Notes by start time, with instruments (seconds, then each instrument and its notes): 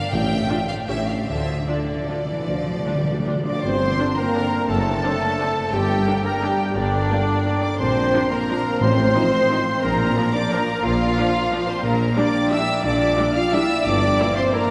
Already playing: harp G2 D3 D4 G4, violin section D5 F5
0.12 double bass section A1, tuba A1, timpani A2, harp A2, cello section A2, violin section E5 G5
0.31 harp A3
0.49 viola section D4 F4, harp D4
0.69 harp A3, violin section D5 F5
0.88 double bass section A1, tuba A1, harp A2, cello section A2, viola section C#4 G4, violin section C#5 E5
1.08 harp G4 A4, violin section D5 F5
1.27 double bass section D2, tuba D2, timpani D3, harp D3, cello section D3, violin section C5 E5
1.35 timpani D3
1.42 timpani D3
1.48 timpani D3, harp A3
1.60 timpani D3
1.68 timpani D3, cello section D3, viola section D4 F4, harp D4, violin section A4 D5
1.76 timpani D3
1.85 timpani D3
1.89 timpani D3, harp A3
2.01 timpani D3
2.09 timpani D3, viola section D4 F4, harp F4
2.18 timpani D3
2.25 timpani D3, cello section E3, harp A3
2.33 timpani D3
2.40 timpani D3
2.47 double bass section D2, tuba D2, harp D3, timpani D3, cello section F3
2.55 timpani D3
2.63 timpani D3, harp D4
2.71 timpani D3
2.79 timpani D3
2.86 timpani D3, cello section G3, harp A3, viola section D4 F4
2.95 timpani D3
3.04 timpani D3, harp D4
3.11 timpani D3
3.20 timpani D3
3.26 timpani D3, viola section D4 F4, harp F4
3.36 timpani D3
3.44 timpani D3, cello section F3, harp A3, french horn section D4, violin section D5 D6, flute section D5, trumpet section D5
3.52 timpani D3
3.63 tuba G1, double bass section G1, harp G2, cello section G2, french horn section C4, violin section C5 C6, trumpet section C5, flute section C5
3.73 harp D3
3.81 harp D4
3.90 harp G4
3.99 trombone section D3 D4, viola section D4, harp A#4
4.08 harp D5
4.17 french horn section A#3, violin section A#4 A#5, trumpet section A#4, flute section A#4, harp G5
4.26 harp A#5
4.34 trombone section D3 D4, viola section D4, harp G5
4.44 harp D5
4.52 harp A#4
4.61 harp D4
4.69 tuba F#1, double bass section F#1, harp F#2, cello section F#2, french horn section A3, trumpet section A4, violin section A4 A5, flute section A4
4.77 harp F#3
4.86 harp D4
4.95 harp A4
5.03 trombone section D3 C4, viola section C4 D4
5.13 harp D5
5.22 harp A5
5.38 trombone section D3 C4, viola section C4 D4, harp A5
5.48 harp D5
5.56 harp C5
5.64 harp D4
5.72 tuba G1, double bass section G1, harp G2, cello section G2, french horn section G3, violin section G4 G5, trumpet section G4, flute section G4
5.80 harp D3
5.89 harp D4
6.06 trombone section D3 A#3, viola section A#3 D4, harp A#4
6.15 harp D5
6.24 french horn section A#3, trumpet section A#4, violin section A#4 A#5, flute section A#4, harp G5
6.33 harp A#5
6.41 trombone section D3 A#3, french horn section G3, viola section A#3 D4, violin section G4 G5, flute section G4, trumpet section G4
6.50 harp D5
6.59 harp A#4
6.67 harp D4
6.75 double bass section G1, tuba G1, harp G2, cello section G2, french horn section D3, violin section D4 D5, trumpet section D4, flute section D4
6.84 harp D3
6.92 harp D4
7.10 trombone section D3 A#3, viola section A#3 D4, harp A#4
7.19 harp D5
7.37 harp A#5
7.46 trombone section D3 A#3, viola section A#3 D4, harp G5
7.55 harp D5
7.62 french horn section D4, harp A#4, flute section D5, violin section D5 D6, trumpet section D5
7.72 harp D4
7.79 double bass section A#1, tuba A#1, harp A#2, cello section A#2, french horn section C4, violin section C5 C6, trumpet section C5, flute section C5
7.88 harp F3
7.96 harp D4
8.13 trombone section F3 D4, viola section F3 D4, harp A#4
8.22 harp D5
8.29 french horn section A#3, flute section A#4, trumpet section A#4, violin section A#4 A#5, harp F5
8.48 trombone section F3 D4, viola section F3 D4, harp F5
8.57 harp D5
8.66 harp A#4
8.74 harp D4
8.81 tuba A1, double bass section A1, cello section A2, timpani A2, harp A2, french horn section C4, violin section C5 C6, flute section C5, trumpet section C5
8.89 harp A3
8.97 harp C4
9.06 harp F4
9.15 trombone section F3 D#4, viola section F3 D#4
9.24 harp C5
9.33 harp F5
9.41 harp D#6
9.50 viola section F3 D#4, trombone section F3 D#4
9.67 harp D#5
9.75 harp C4
9.82 tuba A#1, double bass section A#1, harp A#2, cello section A#2, french horn section A#3, flute section A#4, violin section A#4 A#5, trumpet section A#4
9.91 harp F3
10.00 harp A#3
10.08 harp F4
10.17 trombone section F3 D4, viola section F3 D4, harp D5
10.26 harp A#4
10.34 french horn section D4, flute section D5, trumpet section D5, violin section D5 D6, harp F5
10.43 harp D6
10.51 viola section F3 D4, trombone section F3 D4, french horn section A#3, violin section A#4 A#5, flute section A#4, trumpet section A#4, harp F5
10.69 harp D5
10.77 harp A#3
10.84 double bass section A#1, tuba A#1, cello section A#2, harp A#2, french horn section F3, violin section F4 F5, flute section F4, trumpet section F4
10.93 harp F3
11.01 harp A#3
11.17 trombone section F3 D4, viola section F3 D4, harp D5
11.27 harp A#4
11.35 harp F5
11.43 harp D6
11.50 trombone section F3 D4, viola section F3 D4, harp F5
11.60 harp A#4
11.68 french horn section C4, trumpet section C5, violin section C5 C6, flute section C5, harp D5
11.76 harp A#3
11.83 double bass section A#1, tuba A#1, cello section A#2, harp A#2, french horn section A#3, violin section A#4 A#5, flute section A#4, trumpet section A#4
11.92 harp F3
12.00 harp A#3
12.08 harp G4
12.15 trombone section G3 D4, viola section G3 D4, french horn section D4, violin section D5 D6, harp D5, trumpet section D5, flute section D5
12.25 harp A#4
12.34 harp G5
12.50 trombone section G3 D4, viola section G3 D4, french horn section E4, violin section E5 E6, trumpet section E5, flute section E5, harp G5
12.60 harp A#4
12.68 harp D5
12.76 harp A#3
12.83 tuba A#1, double bass section A#1, harp A#2, cello section A#2, french horn section D4, violin section D5 D6, trumpet section D5, flute section D5
12.92 harp F3
13.00 harp A#3
13.09 harp G4
13.17 trombone section G3 D4, viola section G3 D4
13.27 harp A#4
13.35 french horn section F4, violin section F5 F6, flute section F5, trumpet section F5, harp G5
13.44 harp D6
13.52 trombone section G3 D4, viola section G3 D4, french horn section E4, violin section E5 E6, flute section E5, trumpet section E5, harp G5
13.61 harp A#4
13.70 harp D5
13.78 harp A#3
13.85 double bass section G1, tuba G1, harp G2, cello section G2, french horn section D4, flute section D5, violin section D5 D6, trumpet section D5
13.94 harp D3
14.02 harp A#3
14.11 harp E4
14.19 trombone section E3 D4, viola section A#3 E4
14.28 harp A#4
14.36 french horn section C4, violin section C5 C6, trumpet section C5, flute section C5, harp E5
14.53 trombone section E3 D4, viola section A#3 E4, french horn section A#3, violin section A#4 A#5, flute section A#4, trumpet section A#4, harp E5
14.63 harp A#4